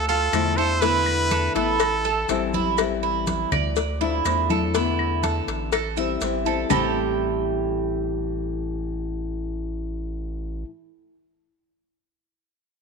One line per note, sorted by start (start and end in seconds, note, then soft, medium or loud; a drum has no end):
0.00 0.29 D2 medium
0.09 0.56 F4 medium
0.09 0.58 A4 loud
0.09 high conga soft
0.33 1.49 E2 loud
0.33 0.56 D3 medium
0.33 0.57 F3 medium
0.33 0.57 A3 medium
0.33 0.57 D4 medium
0.33 0.56 E4 medium
0.33 cowbell medium
0.33 high conga soft
0.33 claves medium
0.33 maracas medium
0.57 0.81 A3 soft
0.57 0.82 D4 soft
0.57 0.81 E4 medium
0.57 0.82 A4 medium
0.57 0.83 C5 loud
0.57 maracas soft
0.81 1.54 D3 medium
0.81 1.55 A3 medium
0.81 1.55 B3 medium
0.81 1.30 E4 medium
0.81 1.54 E4 medium
0.81 1.55 B4 loud
0.81 cowbell loud
0.81 high conga soft
0.81 maracas medium
1.06 high conga soft
1.06 claves medium
1.31 1.55 A4 medium
1.31 cowbell medium
1.31 high conga medium
1.31 maracas medium
1.55 2.25 A1 loud
1.55 1.79 A3 medium
1.55 1.79 B3 medium
1.55 1.79 E4 medium
1.55 2.03 E4 medium
1.55 2.49 A4 medium
1.55 cowbell medium
1.55 high conga soft
1.55 maracas soft
1.79 muted nylon-string guitar stroke medium
1.79 cowbell loud
1.79 high conga soft
1.79 claves medium
1.79 maracas medium
2.04 2.52 A4 medium
2.04 high conga soft
2.04 maracas medium
2.28 3.45 A1 medium
2.28 2.52 E3 medium
2.28 2.53 G3 medium
2.28 2.53 C4 medium
2.28 2.52 E4 medium
2.28 cowbell medium
2.28 high conga soft
2.28 maracas medium
2.53 2.78 G3 soft
2.53 2.78 C4 soft
2.53 2.77 E4 soft
2.53 2.78 E4 medium
2.53 high conga medium
2.53 maracas soft
2.77 3.77 E3 medium
2.77 3.76 G3 medium
2.77 3.76 C4 medium
2.77 3.77 E4 medium
2.77 cowbell loud
2.77 high conga soft
2.77 claves medium
2.77 maracas medium
3.03 3.50 E4 medium
3.03 high conga soft
3.27 cowbell medium
3.27 high conga loud
3.27 maracas medium
3.52 4.21 D2 loud
3.52 3.99 D5 medium
3.52 cowbell medium
3.52 high conga soft
3.52 low conga medium
3.52 claves medium
3.52 maracas soft
3.76 muted nylon-string guitar stroke medium
3.76 cowbell loud
3.76 high conga soft
3.76 maracas medium
4.01 4.24 F3 medium
4.01 4.25 A3 medium
4.01 4.25 D4 medium
4.01 4.24 E4 medium
4.01 4.48 E4 medium
4.01 high conga soft
4.25 5.41 E2 medium
4.25 4.49 F3 medium
4.25 4.49 A3 medium
4.25 4.49 D4 medium
4.25 4.48 E4 medium
4.25 cowbell medium
4.25 high conga soft
4.25 claves medium
4.25 maracas medium
4.49 4.74 F3 medium
4.49 4.74 A3 medium
4.49 4.74 D4 medium
4.49 4.73 E4 medium
4.49 4.74 A4 medium
4.49 high conga medium
4.49 maracas soft
4.74 5.71 D3 medium
4.74 5.72 A3 medium
4.74 5.72 B3 medium
4.74 5.22 E4 medium
4.74 5.72 E4 medium
4.74 cowbell loud
4.74 high conga soft
4.74 maracas medium
4.99 high conga soft
4.99 claves medium
5.23 5.71 A4 medium
5.23 cowbell medium
5.23 high conga medium
5.23 maracas medium
5.47 6.17 A1 loud
5.47 cowbell medium
5.47 high conga soft
5.47 maracas soft
5.72 5.96 A4 medium
5.72 muted nylon-string guitar stroke medium
5.72 cowbell loud
5.72 high conga soft
5.72 claves medium
5.72 maracas medium
5.97 6.21 G3 medium
5.97 6.21 C4 medium
5.97 6.20 E4 medium
5.97 6.45 E5 medium
5.97 high conga soft
5.97 maracas medium
6.21 6.65 A1 loud
6.21 6.45 E3 soft
6.21 6.45 G3 medium
6.21 6.46 C4 medium
6.21 6.44 E4 medium
6.21 cowbell medium
6.21 high conga soft
6.21 maracas medium
6.45 6.70 G3 medium
6.45 6.70 C4 medium
6.45 6.69 E4 medium
6.45 6.70 A4 medium
6.45 maracas soft
6.70 10.64 A1 medium
6.70 10.68 A2 medium
6.70 10.69 E3 medium
6.70 10.70 G3 medium
6.70 10.64 A3 medium
6.70 10.71 C4 medium
6.70 10.64 E4 medium
6.70 10.71 E4 medium
6.70 10.65 G4 medium
6.70 low bongo loud
6.70 low conga medium
6.70 claves medium
6.70 maracas loud